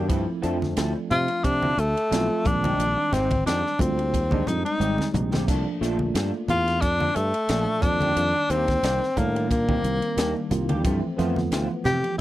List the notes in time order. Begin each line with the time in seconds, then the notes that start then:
0.08 G2 F3 A3 C4 E4 A4, kick, hi-hat pedal, ride
0.27 muted clean electric guitar stroke
0.42 F2 F3 A3 C4 D4 E4 A4, hi-hat pedal, ride
0.60 muted clean electric guitar stroke, snare, high conga
0.77 D2 F3 C4 E4 A4, snare, hi-hat pedal, ride
0.96 muted clean electric guitar stroke
1.11 C3 F4, hi-hat pedal, ride, low conga
1.28 muted clean electric guitar stroke, ride
1.44 C3 D4, muted clean electric guitar stroke, kick, hi-hat pedal, ride
1.62 F3 C4 E4 A4, high conga
1.77 D2 A3, muted clean electric guitar stroke, hi-hat pedal, ride
1.97 ride
2.10 B1 F3 A3 C4 E4 F4 A4, snare, hi-hat pedal, ride
2.30 muted clean electric guitar stroke
2.45 A#1 D#3 G3 G#3 C4 D4, muted clean electric guitar stroke, kick, hi-hat pedal, ride, low conga
2.63 C4 D#4 G4, ride, high conga
2.78 A#1, hi-hat pedal, ride
2.97 muted clean electric guitar stroke
3.12 G#1 G#3 C4 D#4 G4, snare, hi-hat pedal, ride, low conga
3.31 muted clean electric guitar stroke, kick, ride, high conga
3.45 F2 G#3 C4 D4 D#4 G4, snare, hi-hat pedal, ride
3.64 muted clean electric guitar stroke, snare
3.79 D2 G3 G#3 C4 F4, kick, hi-hat pedal, ride, high conga, low conga
3.98 muted clean electric guitar stroke, ride
4.13 D#2, muted clean electric guitar stroke, kick, hi-hat pedal, ride
4.31 G3 G#3 C4 D4 D#4 G4, kick, high conga
4.47 F2 D#4, muted clean electric guitar stroke, hi-hat pedal, ride, low conga
4.65 D#4, ride
4.79 G#1 G3 G#3 C4 D#4 G4, hi-hat pedal, high tom
4.98 muted clean electric guitar stroke, snare, high conga
5.13 A#1 G3 G#3 C4 D#4, muted clean electric guitar stroke, hi-hat pedal, mid tom, low conga
5.32 C4 D#4 G4, snare, high conga
5.47 C2 F3 A3 A#3 D4 A4, kick, hi-hat pedal, crash, ride
5.66 muted clean electric guitar stroke
5.81 A#1 F3 A3 A#3 D4 F4 A4, snare, hi-hat pedal, ride
5.99 muted clean electric guitar stroke, high conga
6.14 G2 F3 A#3 D4 A4, snare, hi-hat pedal, ride
6.33 muted clean electric guitar stroke
6.48 E2 F4, hi-hat pedal, ride, low conga
6.67 muted clean electric guitar stroke, snare, ride
6.81 F2 D4, muted clean electric guitar stroke, kick, hi-hat pedal, ride
7.00 F3 A#3 D4 A4, high conga
7.16 G2 A3, muted clean electric guitar stroke, hi-hat pedal, ride
7.34 ride
7.49 A#1 A#2 F3 A3 A#3 D4 A4, snare, hi-hat pedal, ride
7.68 muted clean electric guitar stroke
7.82 F2 D#3 G3 A#3 D4, muted clean electric guitar stroke, kick, hi-hat pedal, ride, low conga
8.01 A#3 D4 G4, ride, high conga
8.16 F2, hi-hat pedal, ride
8.35 muted clean electric guitar stroke
8.50 D#2 D#3 A#3 C4 D4 G4, hi-hat pedal, ride
8.68 muted clean electric guitar stroke, kick, snare, ride, high conga
8.83 C2 D#3 A#3 D4 G4, snare, hi-hat pedal, ride
9.02 muted clean electric guitar stroke, snare
9.16 A2 D#3 G3 A#3 D4 A#4, kick, hi-hat pedal, ride, low conga
9.35 muted clean electric guitar stroke, ride
9.50 A#2 A#3, muted clean electric guitar stroke, kick, hi-hat pedal, ride
9.68 D#3 G3 A#3 C4 D4 G4, kick, high conga
9.84 C2, muted clean electric guitar stroke, hi-hat pedal, ride
10.02 ride
10.16 D#2 D#3 G3 A#3 D4 G4, snare, hi-hat pedal, ride
10.36 muted clean electric guitar stroke
10.50 C2 D#3 G3 A#3 F4, muted clean electric guitar stroke, hi-hat pedal, ride, low conga
10.69 A#3 D4 G4, ride, high conga
10.83 G2 E3 F3 A3 C4 F4, kick, hi-hat pedal, ride
11.02 muted clean electric guitar stroke
11.17 F2 E3 F3 A3 B3 C4 F4, snare, hi-hat pedal, ride
11.36 muted clean electric guitar stroke, snare, high conga
11.51 D2 E3 A3 C4 F4, snare, hi-hat pedal, ride
11.71 muted clean electric guitar stroke
11.85 C3 G4, hi-hat pedal, ride, low conga
12.03 muted clean electric guitar stroke, ride